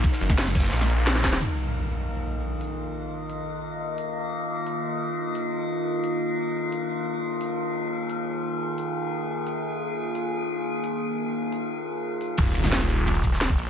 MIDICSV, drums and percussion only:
0, 0, Header, 1, 2, 480
1, 0, Start_track
1, 0, Tempo, 342857
1, 55, Time_signature, 4, 2, 24, 8
1, 19177, End_track
2, 0, Start_track
2, 0, Title_t, "Drums"
2, 54, Note_on_c, 9, 36, 118
2, 54, Note_on_c, 9, 42, 97
2, 54, Note_on_c, 9, 53, 75
2, 61, Note_on_c, 9, 51, 84
2, 167, Note_on_c, 9, 38, 54
2, 194, Note_off_c, 9, 36, 0
2, 194, Note_off_c, 9, 42, 0
2, 194, Note_off_c, 9, 53, 0
2, 201, Note_off_c, 9, 51, 0
2, 294, Note_on_c, 9, 42, 70
2, 294, Note_on_c, 9, 82, 61
2, 307, Note_off_c, 9, 38, 0
2, 314, Note_on_c, 9, 51, 67
2, 414, Note_on_c, 9, 36, 107
2, 416, Note_on_c, 9, 40, 62
2, 434, Note_off_c, 9, 42, 0
2, 434, Note_off_c, 9, 82, 0
2, 454, Note_off_c, 9, 51, 0
2, 533, Note_on_c, 9, 38, 121
2, 533, Note_on_c, 9, 46, 77
2, 536, Note_off_c, 9, 38, 0
2, 536, Note_on_c, 9, 38, 116
2, 536, Note_on_c, 9, 42, 102
2, 536, Note_on_c, 9, 53, 73
2, 554, Note_off_c, 9, 36, 0
2, 556, Note_off_c, 9, 40, 0
2, 655, Note_off_c, 9, 42, 0
2, 655, Note_on_c, 9, 40, 52
2, 655, Note_on_c, 9, 42, 42
2, 673, Note_off_c, 9, 46, 0
2, 676, Note_off_c, 9, 38, 0
2, 676, Note_off_c, 9, 53, 0
2, 772, Note_on_c, 9, 38, 87
2, 774, Note_on_c, 9, 36, 114
2, 776, Note_on_c, 9, 46, 80
2, 776, Note_on_c, 9, 82, 66
2, 782, Note_on_c, 9, 51, 78
2, 795, Note_off_c, 9, 40, 0
2, 795, Note_off_c, 9, 42, 0
2, 837, Note_off_c, 9, 51, 0
2, 837, Note_on_c, 9, 51, 79
2, 843, Note_off_c, 9, 38, 0
2, 843, Note_on_c, 9, 38, 93
2, 886, Note_off_c, 9, 38, 0
2, 886, Note_on_c, 9, 38, 97
2, 893, Note_off_c, 9, 51, 0
2, 893, Note_on_c, 9, 51, 69
2, 914, Note_off_c, 9, 36, 0
2, 916, Note_off_c, 9, 46, 0
2, 916, Note_off_c, 9, 82, 0
2, 945, Note_off_c, 9, 51, 0
2, 945, Note_on_c, 9, 51, 65
2, 964, Note_off_c, 9, 38, 0
2, 964, Note_on_c, 9, 38, 96
2, 1009, Note_off_c, 9, 38, 0
2, 1009, Note_on_c, 9, 38, 104
2, 1016, Note_on_c, 9, 42, 101
2, 1016, Note_on_c, 9, 53, 73
2, 1020, Note_off_c, 9, 51, 0
2, 1020, Note_on_c, 9, 51, 86
2, 1136, Note_on_c, 9, 40, 51
2, 1140, Note_off_c, 9, 51, 0
2, 1140, Note_on_c, 9, 51, 47
2, 1149, Note_off_c, 9, 38, 0
2, 1156, Note_off_c, 9, 42, 0
2, 1156, Note_off_c, 9, 53, 0
2, 1255, Note_off_c, 9, 51, 0
2, 1255, Note_on_c, 9, 51, 55
2, 1256, Note_on_c, 9, 42, 71
2, 1256, Note_on_c, 9, 82, 62
2, 1276, Note_off_c, 9, 40, 0
2, 1395, Note_off_c, 9, 51, 0
2, 1396, Note_off_c, 9, 42, 0
2, 1396, Note_off_c, 9, 82, 0
2, 1490, Note_on_c, 9, 51, 83
2, 1495, Note_on_c, 9, 38, 120
2, 1495, Note_on_c, 9, 42, 99
2, 1495, Note_on_c, 9, 53, 74
2, 1615, Note_off_c, 9, 38, 0
2, 1615, Note_on_c, 9, 38, 55
2, 1621, Note_off_c, 9, 51, 0
2, 1621, Note_on_c, 9, 51, 38
2, 1635, Note_off_c, 9, 42, 0
2, 1635, Note_off_c, 9, 53, 0
2, 1734, Note_off_c, 9, 51, 0
2, 1734, Note_on_c, 9, 36, 60
2, 1734, Note_on_c, 9, 51, 73
2, 1735, Note_off_c, 9, 38, 0
2, 1735, Note_on_c, 9, 38, 83
2, 1735, Note_on_c, 9, 46, 82
2, 1735, Note_on_c, 9, 82, 68
2, 1855, Note_off_c, 9, 38, 0
2, 1855, Note_on_c, 9, 38, 83
2, 1855, Note_on_c, 9, 42, 39
2, 1874, Note_off_c, 9, 36, 0
2, 1874, Note_off_c, 9, 51, 0
2, 1875, Note_off_c, 9, 46, 0
2, 1875, Note_off_c, 9, 82, 0
2, 1995, Note_off_c, 9, 38, 0
2, 1995, Note_off_c, 9, 42, 0
2, 2695, Note_on_c, 9, 46, 73
2, 2835, Note_off_c, 9, 46, 0
2, 3655, Note_on_c, 9, 46, 78
2, 3795, Note_off_c, 9, 46, 0
2, 4615, Note_on_c, 9, 46, 77
2, 4755, Note_off_c, 9, 46, 0
2, 5574, Note_on_c, 9, 46, 79
2, 5714, Note_off_c, 9, 46, 0
2, 6533, Note_on_c, 9, 46, 79
2, 6673, Note_off_c, 9, 46, 0
2, 7494, Note_on_c, 9, 46, 83
2, 7634, Note_off_c, 9, 46, 0
2, 8454, Note_on_c, 9, 46, 83
2, 8594, Note_off_c, 9, 46, 0
2, 9414, Note_on_c, 9, 46, 83
2, 9554, Note_off_c, 9, 46, 0
2, 10373, Note_on_c, 9, 46, 79
2, 10513, Note_off_c, 9, 46, 0
2, 11335, Note_on_c, 9, 46, 84
2, 11475, Note_off_c, 9, 46, 0
2, 12294, Note_on_c, 9, 46, 79
2, 12434, Note_off_c, 9, 46, 0
2, 13254, Note_on_c, 9, 46, 80
2, 13394, Note_off_c, 9, 46, 0
2, 14214, Note_on_c, 9, 46, 74
2, 14354, Note_off_c, 9, 46, 0
2, 15175, Note_on_c, 9, 46, 80
2, 15315, Note_off_c, 9, 46, 0
2, 16135, Note_on_c, 9, 46, 71
2, 16275, Note_off_c, 9, 46, 0
2, 17094, Note_on_c, 9, 46, 77
2, 17234, Note_off_c, 9, 46, 0
2, 17326, Note_on_c, 9, 51, 83
2, 17334, Note_on_c, 9, 36, 123
2, 17334, Note_on_c, 9, 42, 98
2, 17334, Note_on_c, 9, 49, 104
2, 17462, Note_off_c, 9, 51, 0
2, 17462, Note_on_c, 9, 51, 45
2, 17474, Note_off_c, 9, 36, 0
2, 17474, Note_off_c, 9, 42, 0
2, 17474, Note_off_c, 9, 49, 0
2, 17569, Note_off_c, 9, 51, 0
2, 17569, Note_on_c, 9, 51, 69
2, 17574, Note_on_c, 9, 42, 68
2, 17574, Note_on_c, 9, 82, 61
2, 17694, Note_on_c, 9, 40, 61
2, 17700, Note_on_c, 9, 38, 48
2, 17709, Note_off_c, 9, 51, 0
2, 17714, Note_off_c, 9, 42, 0
2, 17714, Note_off_c, 9, 82, 0
2, 17813, Note_off_c, 9, 38, 0
2, 17813, Note_on_c, 9, 38, 118
2, 17813, Note_on_c, 9, 42, 98
2, 17815, Note_off_c, 9, 38, 0
2, 17815, Note_on_c, 9, 38, 123
2, 17819, Note_on_c, 9, 51, 90
2, 17834, Note_off_c, 9, 40, 0
2, 17934, Note_on_c, 9, 40, 52
2, 17937, Note_off_c, 9, 51, 0
2, 17937, Note_on_c, 9, 51, 46
2, 17953, Note_off_c, 9, 42, 0
2, 17955, Note_off_c, 9, 38, 0
2, 18054, Note_on_c, 9, 46, 81
2, 18054, Note_on_c, 9, 82, 63
2, 18055, Note_off_c, 9, 51, 0
2, 18055, Note_on_c, 9, 51, 67
2, 18074, Note_off_c, 9, 40, 0
2, 18194, Note_off_c, 9, 46, 0
2, 18194, Note_off_c, 9, 82, 0
2, 18195, Note_off_c, 9, 51, 0
2, 18294, Note_on_c, 9, 40, 37
2, 18294, Note_on_c, 9, 42, 97
2, 18307, Note_on_c, 9, 51, 89
2, 18407, Note_off_c, 9, 51, 0
2, 18407, Note_on_c, 9, 51, 44
2, 18434, Note_off_c, 9, 40, 0
2, 18434, Note_off_c, 9, 42, 0
2, 18534, Note_on_c, 9, 36, 62
2, 18534, Note_on_c, 9, 42, 71
2, 18534, Note_on_c, 9, 82, 59
2, 18545, Note_off_c, 9, 51, 0
2, 18545, Note_on_c, 9, 51, 69
2, 18658, Note_on_c, 9, 38, 59
2, 18674, Note_off_c, 9, 36, 0
2, 18674, Note_off_c, 9, 42, 0
2, 18674, Note_off_c, 9, 82, 0
2, 18685, Note_off_c, 9, 51, 0
2, 18769, Note_on_c, 9, 51, 93
2, 18773, Note_off_c, 9, 38, 0
2, 18773, Note_on_c, 9, 38, 121
2, 18773, Note_on_c, 9, 42, 95
2, 18776, Note_off_c, 9, 38, 0
2, 18776, Note_on_c, 9, 38, 117
2, 18894, Note_on_c, 9, 36, 106
2, 18894, Note_on_c, 9, 40, 41
2, 18895, Note_off_c, 9, 38, 0
2, 18895, Note_on_c, 9, 38, 52
2, 18909, Note_off_c, 9, 51, 0
2, 18913, Note_off_c, 9, 42, 0
2, 19014, Note_on_c, 9, 46, 80
2, 19014, Note_on_c, 9, 82, 63
2, 19024, Note_on_c, 9, 51, 72
2, 19034, Note_off_c, 9, 36, 0
2, 19034, Note_off_c, 9, 40, 0
2, 19035, Note_off_c, 9, 38, 0
2, 19134, Note_on_c, 9, 38, 47
2, 19154, Note_off_c, 9, 46, 0
2, 19154, Note_off_c, 9, 82, 0
2, 19164, Note_off_c, 9, 51, 0
2, 19177, Note_off_c, 9, 38, 0
2, 19177, End_track
0, 0, End_of_file